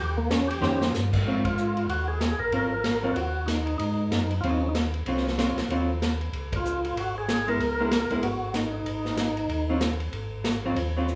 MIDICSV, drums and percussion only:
0, 0, Header, 1, 2, 480
1, 0, Start_track
1, 0, Tempo, 316957
1, 1896, Time_signature, 4, 2, 24, 8
1, 16890, End_track
2, 0, Start_track
2, 0, Title_t, "Drums"
2, 464, Note_on_c, 9, 38, 73
2, 467, Note_on_c, 9, 44, 57
2, 467, Note_on_c, 9, 51, 69
2, 615, Note_off_c, 9, 38, 0
2, 618, Note_off_c, 9, 44, 0
2, 618, Note_off_c, 9, 51, 0
2, 765, Note_on_c, 9, 51, 56
2, 917, Note_off_c, 9, 51, 0
2, 945, Note_on_c, 9, 38, 52
2, 1097, Note_off_c, 9, 38, 0
2, 1232, Note_on_c, 9, 38, 68
2, 1383, Note_off_c, 9, 38, 0
2, 1425, Note_on_c, 9, 38, 50
2, 1428, Note_on_c, 9, 44, 65
2, 1576, Note_off_c, 9, 38, 0
2, 1580, Note_off_c, 9, 44, 0
2, 1711, Note_on_c, 9, 36, 82
2, 1716, Note_on_c, 9, 49, 79
2, 1863, Note_off_c, 9, 36, 0
2, 1867, Note_off_c, 9, 49, 0
2, 2191, Note_on_c, 9, 36, 69
2, 2194, Note_on_c, 9, 51, 61
2, 2342, Note_off_c, 9, 36, 0
2, 2346, Note_off_c, 9, 51, 0
2, 2388, Note_on_c, 9, 44, 57
2, 2539, Note_off_c, 9, 44, 0
2, 2677, Note_on_c, 9, 51, 41
2, 2829, Note_off_c, 9, 51, 0
2, 2869, Note_on_c, 9, 51, 56
2, 3020, Note_off_c, 9, 51, 0
2, 3342, Note_on_c, 9, 38, 64
2, 3345, Note_on_c, 9, 44, 46
2, 3345, Note_on_c, 9, 51, 54
2, 3493, Note_off_c, 9, 38, 0
2, 3496, Note_off_c, 9, 44, 0
2, 3496, Note_off_c, 9, 51, 0
2, 3820, Note_on_c, 9, 51, 48
2, 3972, Note_off_c, 9, 51, 0
2, 4301, Note_on_c, 9, 38, 63
2, 4304, Note_on_c, 9, 44, 51
2, 4304, Note_on_c, 9, 51, 63
2, 4452, Note_off_c, 9, 38, 0
2, 4455, Note_off_c, 9, 44, 0
2, 4455, Note_off_c, 9, 51, 0
2, 4783, Note_on_c, 9, 51, 59
2, 4934, Note_off_c, 9, 51, 0
2, 5265, Note_on_c, 9, 38, 53
2, 5268, Note_on_c, 9, 44, 60
2, 5268, Note_on_c, 9, 51, 69
2, 5416, Note_off_c, 9, 38, 0
2, 5419, Note_off_c, 9, 44, 0
2, 5419, Note_off_c, 9, 51, 0
2, 5555, Note_on_c, 9, 51, 39
2, 5706, Note_off_c, 9, 51, 0
2, 5746, Note_on_c, 9, 51, 56
2, 5898, Note_off_c, 9, 51, 0
2, 6232, Note_on_c, 9, 38, 62
2, 6235, Note_on_c, 9, 44, 50
2, 6235, Note_on_c, 9, 51, 65
2, 6384, Note_off_c, 9, 38, 0
2, 6387, Note_off_c, 9, 44, 0
2, 6387, Note_off_c, 9, 51, 0
2, 6521, Note_on_c, 9, 51, 42
2, 6672, Note_off_c, 9, 51, 0
2, 6716, Note_on_c, 9, 51, 53
2, 6868, Note_off_c, 9, 51, 0
2, 7188, Note_on_c, 9, 38, 58
2, 7191, Note_on_c, 9, 44, 54
2, 7191, Note_on_c, 9, 51, 58
2, 7339, Note_off_c, 9, 38, 0
2, 7342, Note_off_c, 9, 44, 0
2, 7342, Note_off_c, 9, 51, 0
2, 7477, Note_on_c, 9, 51, 38
2, 7629, Note_off_c, 9, 51, 0
2, 7664, Note_on_c, 9, 51, 52
2, 7815, Note_off_c, 9, 51, 0
2, 7827, Note_on_c, 9, 38, 28
2, 7978, Note_off_c, 9, 38, 0
2, 7988, Note_on_c, 9, 38, 40
2, 8139, Note_off_c, 9, 38, 0
2, 8153, Note_on_c, 9, 38, 59
2, 8156, Note_on_c, 9, 44, 48
2, 8156, Note_on_c, 9, 51, 65
2, 8305, Note_off_c, 9, 38, 0
2, 8308, Note_off_c, 9, 44, 0
2, 8308, Note_off_c, 9, 51, 0
2, 8443, Note_on_c, 9, 38, 44
2, 8446, Note_on_c, 9, 51, 49
2, 8595, Note_off_c, 9, 38, 0
2, 8598, Note_off_c, 9, 51, 0
2, 8638, Note_on_c, 9, 51, 54
2, 8789, Note_off_c, 9, 51, 0
2, 9117, Note_on_c, 9, 38, 61
2, 9120, Note_on_c, 9, 44, 45
2, 9120, Note_on_c, 9, 51, 54
2, 9268, Note_off_c, 9, 38, 0
2, 9271, Note_off_c, 9, 44, 0
2, 9271, Note_off_c, 9, 51, 0
2, 9404, Note_on_c, 9, 51, 38
2, 9555, Note_off_c, 9, 51, 0
2, 9591, Note_on_c, 9, 51, 52
2, 9742, Note_off_c, 9, 51, 0
2, 9881, Note_on_c, 9, 36, 71
2, 9884, Note_on_c, 9, 51, 65
2, 10032, Note_off_c, 9, 36, 0
2, 10035, Note_off_c, 9, 51, 0
2, 10076, Note_on_c, 9, 44, 57
2, 10227, Note_off_c, 9, 44, 0
2, 10368, Note_on_c, 9, 51, 45
2, 10519, Note_off_c, 9, 51, 0
2, 10559, Note_on_c, 9, 51, 59
2, 10710, Note_off_c, 9, 51, 0
2, 11032, Note_on_c, 9, 38, 68
2, 11035, Note_on_c, 9, 44, 59
2, 11035, Note_on_c, 9, 51, 59
2, 11183, Note_off_c, 9, 38, 0
2, 11186, Note_off_c, 9, 44, 0
2, 11186, Note_off_c, 9, 51, 0
2, 11326, Note_on_c, 9, 51, 39
2, 11478, Note_off_c, 9, 51, 0
2, 11516, Note_on_c, 9, 51, 53
2, 11667, Note_off_c, 9, 51, 0
2, 11983, Note_on_c, 9, 38, 67
2, 11986, Note_on_c, 9, 44, 60
2, 11986, Note_on_c, 9, 51, 63
2, 12135, Note_off_c, 9, 38, 0
2, 12138, Note_off_c, 9, 44, 0
2, 12138, Note_off_c, 9, 51, 0
2, 12273, Note_on_c, 9, 51, 46
2, 12425, Note_off_c, 9, 51, 0
2, 12460, Note_on_c, 9, 51, 59
2, 12612, Note_off_c, 9, 51, 0
2, 12931, Note_on_c, 9, 38, 54
2, 12934, Note_on_c, 9, 44, 64
2, 12934, Note_on_c, 9, 51, 57
2, 13082, Note_off_c, 9, 38, 0
2, 13085, Note_off_c, 9, 44, 0
2, 13085, Note_off_c, 9, 51, 0
2, 13418, Note_on_c, 9, 51, 55
2, 13570, Note_off_c, 9, 51, 0
2, 13707, Note_on_c, 9, 38, 34
2, 13859, Note_off_c, 9, 38, 0
2, 13889, Note_on_c, 9, 38, 63
2, 13892, Note_on_c, 9, 44, 61
2, 13892, Note_on_c, 9, 51, 66
2, 14041, Note_off_c, 9, 38, 0
2, 14044, Note_off_c, 9, 44, 0
2, 14044, Note_off_c, 9, 51, 0
2, 14189, Note_on_c, 9, 51, 43
2, 14341, Note_off_c, 9, 51, 0
2, 14379, Note_on_c, 9, 51, 53
2, 14530, Note_off_c, 9, 51, 0
2, 14850, Note_on_c, 9, 38, 68
2, 14853, Note_on_c, 9, 44, 58
2, 14853, Note_on_c, 9, 51, 61
2, 15001, Note_off_c, 9, 38, 0
2, 15004, Note_off_c, 9, 44, 0
2, 15004, Note_off_c, 9, 51, 0
2, 15145, Note_on_c, 9, 51, 42
2, 15296, Note_off_c, 9, 51, 0
2, 15336, Note_on_c, 9, 51, 50
2, 15487, Note_off_c, 9, 51, 0
2, 15816, Note_on_c, 9, 38, 70
2, 15819, Note_on_c, 9, 44, 57
2, 15819, Note_on_c, 9, 51, 70
2, 15967, Note_off_c, 9, 38, 0
2, 15970, Note_off_c, 9, 44, 0
2, 15970, Note_off_c, 9, 51, 0
2, 16299, Note_on_c, 9, 51, 58
2, 16451, Note_off_c, 9, 51, 0
2, 16777, Note_on_c, 9, 44, 57
2, 16890, Note_off_c, 9, 44, 0
2, 16890, End_track
0, 0, End_of_file